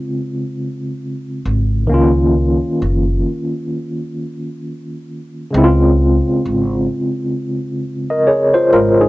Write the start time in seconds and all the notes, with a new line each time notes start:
Already playing: C#3 G#3 C4 F4
1.45 G#1
1.87 C#2 D#3 A#3
1.92 C#4 F4
2.82 F#1
5.51 C#2 C#3 G#3
5.55 C4 E4
5.64 F4
6.45 G#1
8.10 A#4 D#5
8.27 G#4 C#5
8.54 F4 C5
8.73 G#1 F4 A#4
9.01 D#4 G#4